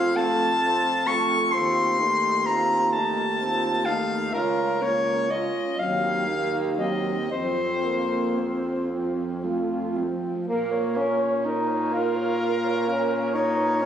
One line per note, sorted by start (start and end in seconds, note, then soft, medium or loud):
0.00 1.49 F2 soft
0.00 0.17 C4 soft
0.00 0.19 F4 soft
0.00 0.18 F5 medium
0.16 0.48 A3 soft
0.16 0.61 A4 soft
0.16 1.09 A5 medium
0.62 1.08 C4 soft
0.62 1.09 F4 soft
1.07 1.52 A3 soft
1.07 1.52 A4 soft
1.07 1.54 C#6 medium
1.52 4.29 D#2 soft
1.52 2.01 C4 soft
1.52 2.01 F4 soft
1.52 2.48 C6 medium
1.99 2.48 A3 soft
1.99 2.49 D#4 soft
2.46 2.93 C4 soft
2.46 2.95 F4 soft
2.46 2.92 A#5 medium
2.92 3.38 A3 soft
2.92 3.27 D#4 soft
2.92 3.87 A5 medium
3.39 3.87 C4 soft
3.39 3.89 F4 soft
3.85 4.32 A3 soft
3.85 4.34 D#4 soft
3.85 4.35 F5 medium
4.33 5.47 C#2 soft
4.33 4.83 C#4 soft
4.33 4.84 F4 soft
4.33 4.83 A#4 medium
4.81 5.31 A#3 soft
4.81 5.31 C#4 soft
4.81 5.32 C#5 medium
5.29 5.77 C#4 soft
5.29 5.78 F4 soft
5.29 5.81 D#5 soft
5.78 7.26 D#2 soft
5.78 6.29 F#3 soft
5.78 6.29 C4 soft
5.78 6.61 F5 medium
6.27 6.80 A#3 soft
6.27 6.80 D#4 soft
6.78 7.15 F#3 soft
6.78 7.31 C4 soft
6.78 7.30 D#5 soft
7.30 10.11 F2 soft
7.30 7.87 C4 soft
7.30 7.86 C4 soft
7.30 8.88 C5 soft
7.85 8.40 A#3 soft
8.38 8.89 C4 soft
8.38 8.91 C4 soft
8.90 9.46 F3 soft
8.90 9.45 C4 soft
9.43 10.00 A3 soft
9.43 9.99 F4 soft
9.97 10.48 F3 soft
9.97 10.33 C4 soft
10.48 13.86 A#2 soft
10.48 10.98 A#3 medium
10.48 10.73 A#4 soft
10.71 10.97 C#5 soft
10.95 11.46 C#4 medium
10.95 11.21 A#4 soft
11.20 11.44 C#5 soft
11.45 11.95 D#4 medium
11.45 11.70 A#4 soft
11.68 11.93 C#5 soft
11.92 12.87 F4 medium
11.92 12.17 A#4 soft
11.92 13.30 A#4 medium
12.16 12.39 C#5 soft
12.40 12.66 A#4 soft
12.64 12.89 C#5 soft
12.87 13.35 C#4 medium
12.87 13.14 A#4 soft
13.12 13.34 C#5 soft
13.34 13.83 D#4 medium
13.34 13.86 C#5 medium
13.34 13.59 C#5 soft
13.58 13.83 B4 soft
13.81 13.86 C#4 medium
13.81 13.86 C#5 soft